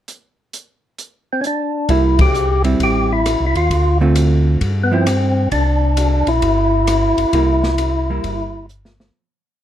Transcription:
0.08 closed hi-hat medium
0.53 closed hi-hat medium
0.98 closed hi-hat medium
1.33 1.41 C4 medium
1.41 1.45 C#4 medium
1.41 closed hi-hat medium
1.47 1.92 D4 medium
1.89 2.75 C2 medium
1.89 2.16 G3 medium
1.89 2.17 A#3 soft
1.89 2.21 E4 medium
1.89 2.17 E4 medium
1.89 kick soft
1.89 ride medium
2.19 2.62 G4 loud
2.19 kick medium
2.19 ride medium
2.34 hi-hat pedal medium
2.64 3.22 G3 medium
2.64 3.22 C4 medium
2.64 3.22 E4 medium
2.64 ride soft
2.80 3.36 A1 medium
2.80 3.13 G4 loud
2.80 kick soft
2.80 ride medium
3.12 3.45 E4 loud
3.26 cross-stick medium
3.26 hi-hat pedal medium
3.26 ride medium
3.40 3.54 C2 medium
3.47 3.56 E4 medium
3.55 3.69 D#2 medium
3.55 3.98 F4 medium
3.55 ride soft
3.70 4.57 D2 medium
3.70 kick soft
3.70 ride medium
4.01 4.58 D3 medium
4.01 4.58 A3 medium
4.01 4.58 C4 medium
4.01 4.59 F4 medium
4.15 hi-hat pedal medium
4.15 ride medium
4.61 5.48 G2 medium
4.61 kick soft
4.61 ride medium
4.83 4.92 B3 medium
4.92 5.05 F3 medium
4.92 5.05 B3 medium
4.92 5.49 C4 medium
4.92 5.06 E4 medium
5.06 cross-stick medium
5.06 hi-hat pedal medium
5.06 ride medium
5.51 6.23 C2 medium
5.51 6.30 D4 medium
5.51 kick soft
5.51 ride medium
5.97 hi-hat pedal medium
5.97 ride medium
6.26 6.41 A#1 medium
6.26 8.66 E4 loud
6.26 ride soft
6.42 7.14 G1 medium
6.42 kick soft
6.42 ride medium
6.87 cross-stick medium
6.87 hi-hat pedal medium
6.87 ride medium
7.17 7.25 G1 soft
7.17 ride soft
7.33 8.20 C2 medium
7.33 7.61 G3 soft
7.33 7.61 A#3 medium
7.33 7.61 E4 medium
7.33 kick soft
7.33 ride medium
7.63 snare soft
7.78 hi-hat pedal medium
7.78 ride medium
8.10 8.67 G3 medium
8.10 8.67 A#3 medium
8.10 8.68 E4 medium
8.24 9.11 G1 medium
8.24 kick soft
8.24 ride medium
8.69 hi-hat pedal medium
8.85 snare medium
9.00 snare medium

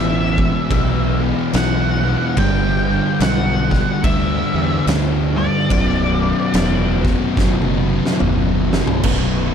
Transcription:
0.00 0.47 A1 loud
0.00 0.37 E2 medium
0.00 0.68 E2 loud
0.00 0.38 B2 medium
0.00 0.69 B2 loud
0.00 0.38 E3 medium
0.00 0.69 E3 loud
0.00 2.33 E3 medium
0.00 2.33 F#3 medium
0.00 2.33 B3 medium
0.00 1.18 E5 medium
0.38 0.69 E2 medium
0.38 0.70 B2 medium
0.38 0.70 E3 loud
0.38 kick medium
0.70 1.31 B1 loud
0.70 1.19 E2 loud
0.70 1.20 B2 loud
0.70 1.20 E3 loud
0.70 kick loud
0.70 crash medium
1.21 1.52 E2 medium
1.21 1.52 B2 medium
1.21 1.53 E3 medium
1.53 2.14 B1 loud
1.53 2.03 E2 medium
1.53 2.03 B2 medium
1.53 2.04 E3 loud
1.53 2.38 F#5 loud
1.53 snare loud
1.53 crash medium
2.04 2.35 E2 medium
2.04 2.35 B2 loud
2.04 2.36 E3 loud
2.36 2.98 G1 loud
2.36 2.87 G2 loud
2.36 2.87 D3 loud
2.36 5.67 G3 medium
2.36 2.88 G3 loud
2.36 5.67 D4 medium
2.36 5.67 A4 medium
2.36 3.21 G5 loud
2.36 kick loud
2.36 crash medium
2.88 3.19 G2 medium
2.88 3.20 D3 loud
2.88 3.20 G3 loud
3.20 3.80 B1 loud
3.20 3.71 G2 medium
3.20 3.71 D3 medium
3.20 3.71 G3 loud
3.20 4.07 F#5 loud
3.20 snare loud
3.20 crash medium
3.71 4.03 G2 medium
3.71 4.03 D3 medium
3.71 4.04 G3 loud
3.71 kick medium
3.71 snare soft
4.04 4.41 D2 loud
4.04 4.53 G2 loud
4.04 4.53 D3 loud
4.04 4.54 G3 loud
4.04 4.83 E5 medium
4.04 kick loud
4.04 crash medium
4.54 4.78 E2 medium
4.54 4.85 G2 medium
4.54 4.86 D3 medium
4.54 4.86 G3 medium
4.86 5.47 D2 medium
4.86 5.36 G2 medium
4.86 5.36 D3 loud
4.86 5.37 G3 medium
4.86 snare loud
4.86 crash medium
5.37 5.68 G2 medium
5.37 5.69 D3 medium
5.37 5.69 G3 medium
5.37 7.01 D5 loud
5.70 6.31 B0 medium
5.70 6.20 B1 loud
5.70 6.21 F#2 loud
5.70 6.21 B2 loud
5.70 9.01 B3 medium
5.70 9.01 F#4 medium
5.70 9.01 B4 medium
5.70 kick loud
5.70 crash medium
6.21 6.53 B1 medium
6.21 6.53 F#2 medium
6.21 6.54 B2 loud
6.53 7.14 E1 loud
6.53 7.03 B1 medium
6.53 7.04 F#2 medium
6.53 7.04 B2 loud
6.53 snare loud
6.53 crash medium
7.04 7.36 B1 medium
7.04 7.36 F#2 medium
7.04 7.37 B2 loud
7.04 kick medium
7.04 snare soft
7.37 7.98 F#1 loud
7.37 7.86 B1 medium
7.37 7.87 F#2 loud
7.37 7.87 B2 loud
7.37 kick loud
7.37 snare medium
7.62 high tom medium
7.88 8.19 B1 medium
7.88 8.20 F#2 medium
7.88 8.20 B2 medium
8.05 snare medium
8.20 8.81 F#1 loud
8.20 8.70 B1 medium
8.20 8.71 F#2 loud
8.20 8.71 B2 loud
8.20 mid tom medium
8.71 9.02 B1 medium
8.71 9.03 F#2 medium
8.71 9.03 B2 medium
8.71 snare loud
8.87 floor tom loud
9.03 9.52 B0 medium
9.03 9.54 B1 loud
9.03 9.54 F#2 loud
9.03 9.54 B2 loud
9.03 9.54 B3 medium
9.03 9.54 F#4 medium
9.03 9.54 B4 medium
9.03 kick loud
9.03 crash loud

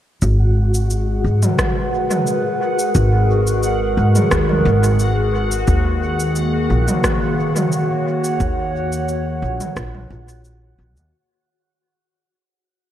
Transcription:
0.22 1.21 G#1 medium
0.22 5.68 G#3 medium
0.22 11.15 F#4 medium
0.22 11.15 F#5 medium
0.22 kick medium
0.22 cabasa soft
0.60 11.13 G#4 medium
0.69 5.68 F#5 medium
0.74 cabasa soft
0.90 cabasa soft
1.24 1.40 G#2 medium
1.24 5.68 B4 medium
1.43 mid tom medium
1.43 cabasa soft
1.59 kick loud
1.59 cross-stick medium
1.59 mid tom medium
1.59 cabasa soft
1.69 7.15 A#4 medium
2.11 mid tom medium
2.11 cabasa medium
2.27 cabasa soft
2.79 cabasa medium
2.95 3.94 G#1 medium
2.95 kick loud
2.95 cabasa soft
3.47 cabasa soft
3.63 cabasa soft
3.97 4.13 G#2 medium
4.16 mid tom medium
4.16 cabasa soft
4.31 4.62 D#2 medium
4.31 kick loud
4.31 cross-stick medium
4.31 cabasa soft
4.49 mid tom medium
4.65 5.65 G#1 medium
4.84 cabasa medium
4.99 cabasa soft
5.52 cabasa medium
5.68 6.67 D#2 medium
5.68 11.13 D#3 medium
5.68 kick loud
5.68 cabasa soft
5.89 11.13 A#3 medium
6.20 cabasa soft
6.36 cabasa soft
6.70 6.86 A#1 medium
6.88 mid tom medium
6.88 cabasa medium
6.99 11.13 F#4 medium
7.04 kick loud
7.04 cross-stick medium
7.04 mid tom medium
7.04 cabasa soft
7.30 11.13 C#5 medium
7.38 11.13 F#5 medium
7.56 mid tom medium
7.56 cabasa soft
7.72 cabasa soft
8.24 cabasa medium
8.40 9.39 D#2 medium
8.40 kick loud
8.40 cabasa soft
8.93 cabasa soft
9.09 cabasa soft
9.42 9.58 A#1 medium
9.61 mid tom medium
9.61 cabasa medium
9.76 10.07 A#1 medium
9.76 kick loud
9.76 cross-stick medium
9.76 cabasa soft
9.95 mid tom medium
10.10 10.76 A#1 medium
10.29 cabasa medium
10.45 cabasa soft
10.79 10.97 A#1 medium
10.97 11.11 D#2 medium
10.97 cabasa medium

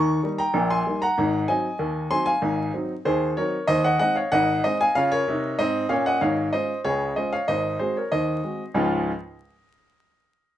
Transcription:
0.00 0.19 D#2 loud
0.00 0.18 D#3 loud
0.00 0.36 A#5 medium
0.00 0.29 C#6 loud
0.23 0.41 G3 medium
0.23 0.41 A#3 medium
0.23 0.41 D#4 medium
0.38 0.69 G5 medium
0.38 0.69 A#5 loud
0.54 0.81 A#1 loud
0.54 0.81 A#2 medium
0.70 1.00 G#5 medium
0.70 1.00 C6 loud
0.86 1.04 G3 medium
0.86 1.04 A#3 medium
0.86 1.04 D#4 medium
1.02 1.46 F#5 medium
1.02 1.39 A#5 loud
1.18 1.45 G#1 loud
1.18 1.44 G#2 loud
1.48 1.66 F#3 medium
1.48 1.66 C4 medium
1.48 1.66 D#4 medium
1.48 2.08 D#5 medium
1.48 2.08 G#5 loud
1.79 2.06 D#2 loud
1.79 2.06 D#3 loud
2.11 2.28 F#3 medium
2.11 2.29 C4 medium
2.11 2.29 D#4 medium
2.11 2.24 G#5 medium
2.11 2.27 C6 loud
2.26 2.71 F5 medium
2.26 2.72 G#5 loud
2.42 2.69 G#1 loud
2.42 2.69 G#2 loud
2.74 2.91 F#3 medium
2.74 2.91 C4 soft
2.74 2.92 D#4 medium
3.05 3.33 D#2 loud
3.05 3.32 D#3 medium
3.05 3.36 G#4 medium
3.05 3.31 C5 loud
3.37 3.55 F#3 medium
3.37 3.55 C4 medium
3.37 3.55 D#4 medium
3.37 3.67 A#4 medium
3.37 3.67 C#5 loud
3.67 3.95 D#2 loud
3.67 3.95 D#3 loud
3.67 3.84 C5 loud
3.67 3.84 D#5 loud
3.84 4.00 D#5 medium
3.84 3.98 F#5 loud
3.99 4.18 G#3 medium
3.99 4.18 C4 medium
3.99 4.18 D#4 medium
3.99 4.16 D#5 medium
3.99 4.16 F#5 loud
4.16 4.32 C#5 medium
4.16 4.32 F5 loud
4.32 4.59 G#1 loud
4.32 4.59 G#2 medium
4.32 4.62 D#5 medium
4.32 4.62 F#5 loud
4.64 4.82 G#3 medium
4.64 4.82 C4 medium
4.64 4.82 D#4 medium
4.64 4.79 C5 medium
4.64 4.80 D#5 loud
4.81 4.94 F5 medium
4.81 4.96 G#5 loud
4.95 5.21 C#3 medium
4.95 5.22 F4 loud
4.95 5.10 C#5 medium
4.95 5.11 F5 loud
5.12 5.56 A#4 medium
5.12 5.56 C#5 loud
5.28 5.53 C3 medium
5.28 5.54 D#4 medium
5.59 5.84 G#2 loud
5.59 5.85 C4 loud
5.59 5.89 C5 medium
5.59 5.89 D#5 loud
5.89 6.15 A#2 medium
5.89 6.16 C#4 medium
5.89 6.05 C#5 medium
5.89 6.06 F5 loud
6.06 6.21 D#5 medium
6.06 6.22 F#5 loud
6.21 6.48 G#1 medium
6.21 6.48 G#2 loud
6.21 6.51 C#5 medium
6.21 6.47 F5 loud
6.53 6.70 G#3 medium
6.53 6.71 C#4 medium
6.53 6.71 F4 medium
6.53 6.83 C5 medium
6.53 6.78 D#5 loud
6.84 7.12 C#2 medium
6.84 7.11 C#3 medium
6.84 7.15 G#4 medium
6.84 7.15 C#5 loud
7.16 7.34 G#3 medium
7.16 7.34 C#4 medium
7.16 7.35 F4 medium
7.16 7.32 C5 medium
7.16 7.32 D#5 loud
7.33 7.48 C#5 medium
7.33 7.48 F5 loud
7.48 7.75 G#1 medium
7.48 7.75 G#2 medium
7.48 7.78 C5 medium
7.48 7.78 D#5 loud
7.79 7.97 G#3 medium
7.79 7.98 C4 medium
7.79 7.98 F#4 medium
7.79 7.95 G#4 medium
7.79 7.96 C5 medium
7.97 8.12 A#4 medium
7.97 8.12 C#5 medium
8.12 8.39 D#2 medium
8.12 8.39 D#3 medium
8.12 8.72 C5 medium
8.12 8.62 D#5 loud
8.44 8.61 G#3 soft
8.44 8.62 C4 soft
8.44 8.62 F#4 medium
8.74 9.10 C#2 loud
8.74 9.10 G#2 loud
8.74 9.10 F3 medium
8.74 9.10 G#3 medium
8.74 9.10 C#4 loud
8.74 9.10 F4 loud
8.74 9.10 F5 medium

